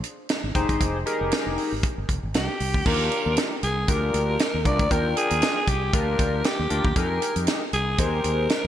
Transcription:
0.04 closed hi-hat
0.29 snare, closed hi-hat
0.44 G#1
0.55 F1 D#4 G4 G#4 C5, kick, closed hi-hat
0.69 G1, kick, closed hi-hat
0.81 F1, kick, closed hi-hat
1.06 D#4 G4 G#4 A#4, closed hi-hat
1.21 F1
1.32 snare, closed hi-hat
1.46 F1
1.58 open hi-hat
1.72 G#1
1.83 kick, closed hi-hat
1.98 G1
2.09 F1, kick, closed hi-hat
2.23 G#1
2.34 C2 G4, snare, closed hi-hat
2.60 C2, open hi-hat
2.74 D2, kick
2.86 D#2 D4 F4 G4 A#4, kick, crash
3.12 closed hi-hat
3.26 D#2
3.37 snare, closed hi-hat
3.63 C2 G#4, closed hi-hat
3.88 D2 D4 F4 G4 A#4, kick, closed hi-hat
4.14 D2, closed hi-hat
4.39 snare, closed hi-hat
4.54 D#2
4.65 C2 D4 F4 G4 A#4 D5, kick, closed hi-hat
4.79 D2, kick, closed hi-hat
4.91 D#2 D4 F4 A#4 G5, kick, closed hi-hat
5.17 G#4, closed hi-hat
5.30 D#2, closed hi-hat
5.42 snare, closed hi-hat
5.68 C2 G4, kick, closed hi-hat
5.93 D2 D4 F4 G4 A#4, kick, closed hi-hat
6.19 D2, kick, closed hi-hat
6.44 G4, snare, closed hi-hat
6.59 D#2
6.70 D2 D4 F4 G4 A#4, closed hi-hat
6.85 D#2, kick
6.96 F2 D#4 G4 G#4 A#4, kick, closed hi-hat
7.22 closed hi-hat
7.36 F2, closed hi-hat
7.47 snare, closed hi-hat
7.73 C2 G#4, closed hi-hat
7.98 D#2 D#4 G4 G#4 A#4 C5, kick, closed hi-hat
8.24 D#2, closed hi-hat
8.49 snare, closed hi-hat

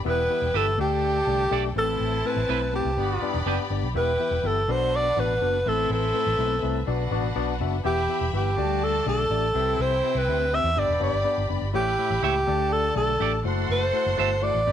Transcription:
0.05 E1 E3 G3 B3 E4 G4 B4 E5 G5
0.30 B3 E4 G4 E5
0.41 E1
0.54 G1 B3 E4 G4 A4 B4 E5
0.78 D2 D3 A3 D4 G4 A4 D5 G5
1.27 C2 A3 D4 G4 D5
1.51 B1 A3 D4 G4 A4 D5
1.76 A1 A2 E3 A3 C4 E4 A4 B4 A5
2.00 A1
2.25 A3 C4 E4 B4
2.36 A1
2.48 B1 A3 C4 E4 B4
2.73 A3 C4 E4 G4 B4
2.85 C2
2.97 G1 G2 G3 B3 D4 G4 D5 B5
3.22 B3 D4 G4 D5, muted fingered electric bass stroke
3.34 E1
3.46 F#1 B3 D4 G4 B4 D5
3.70 G1 B3 D4 G4 D5
3.82 B1
3.94 E1 E3 B3 E4 G4 B4 E5 G5
4.20 B3 E4 G4 E5
4.31 E1
4.43 G1 B3 E4 G4 A4 E5
4.68 B1 B2 B3 D4 F#4 B4 C5 D5 F#5
4.96 D5
5.17 A1 B3 D4 F#4 B4 D5
5.41 F#1 B3 D4 F#4 B4
5.65 A1 A2 E3 A3 C4 E4 A4 B4 E5
5.90 A1 A4
6.14 A3 C4 E4 B4
6.26 A1
6.38 B1 A3 C4 E4 B4
6.62 C2 A3 C4 E4 B4
6.86 B1 B2 B3 D4 F#4 B4 D5 F#5
7.11 A1 B3 D4 F#4 D5
7.36 B1 B3 D4 F#4 D5
7.60 F#1 B3 D4 F#4 E5
7.84 E1 E3 B3 E4 G4 E5 B5
8.09 B3 E4 G4 E5
8.21 E1
8.33 G1 B3 E4 G4 B4
8.56 D2 D3 A3 D4 F#4 D5 A5
8.64 G3
8.84 A4
9.06 B1 A3 D4 G4 A4 D5
9.30 A1 A3 D4 G4 D5
9.54 C2 C3 E3 C4 E4 G4 B4 E5 G5
9.79 C2 C5
10.03 C4 G4 B4 E5
10.15 C2 B4
10.27 D2 C4 G4 B4 E5
10.53 C4 G4 B4 E5
10.64 E2
10.76 G1 G2 B3 D4 G4 D5 B5
10.88 E1
11.00 F#1 B3 D4 G4 D5
11.13 G1
11.25 B3 D4 G4 D5
11.38 G1
11.49 F#1 B3 D4 G4 D5
11.62 G1
11.73 A1 A2 A3 E4 G4 B4 C#5 E5 B5
11.98 A3 E4 G4 C#5
12.10 A1
12.22 C#2 A3 E4 G4 C#5 E5
12.47 D2 D3 A3 D4 G4 A4 D5 A5
12.72 A4
12.96 B1 A3 D4 G4 A4
13.19 A1 A3 D4 G4 A4 D5
13.44 F#1 A3 E4 F#4 A4 C5 F#5 C6
13.69 F#1 C5
13.93 A3 E4 F#4 C5
14.06 F#1
14.17 G1 A3 E4 F#4 A4 C5 E5
14.42 A3 E4 F#4 C5 D5
14.55 A1
14.66 G1 G2 B3 D4 G4 B4 D5 B5

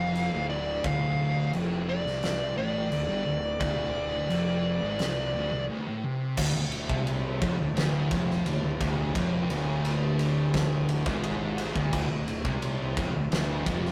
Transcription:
Already playing: F1 F2 F5
0.15 crash
0.33 D1 D2
0.50 D5
0.84 D1 D2 F5, kick, crash
1.53 F1 F2, crash
1.89 D5
2.05 C2 C3, snare
2.23 snare, crash
2.56 A1 A2 D5
2.91 D1 D2, crash
3.09 G1 G2
3.26 D1 D2
3.60 D1 D2 D5, kick, crash
4.30 F1 F2, crash
4.82 G#1 G#2
4.99 C2 C3, snare, crash
5.34 D1 D2
5.52 C2 C3
5.70 D2
5.88 A2
6.04 C3
6.37 D1 D2, kick, crash
6.55 D1 D2
6.72 ride
6.89 C2 C3, kick
7.07 ride
7.41 F1 F2, kick, ride
7.58 D1 D2
7.76 D1 D2, snare, ride
8.11 F1 F2, kick, ride
8.30 snare
8.45 D1 D2, ride
8.62 D1 D2
8.81 D1 D2, kick, ride
9.15 F1 F2, kick, ride
9.49 D1 D2, ride
9.85 ride
10.19 ride
10.54 kick, snare, ride
10.89 ride
11.06 G#1 G#2, kick, snare
11.24 ride
11.58 ride
11.76 D1 D2, kick
11.93 D1 D2, kick, crash
12.10 D1 D2
12.28 ride
12.45 C2 C3, kick
12.62 ride
12.97 F1 F2, kick, ride
13.14 D1 D2
13.32 D1 D2, snare, ride
13.66 F1 F2, kick, ride
13.85 snare

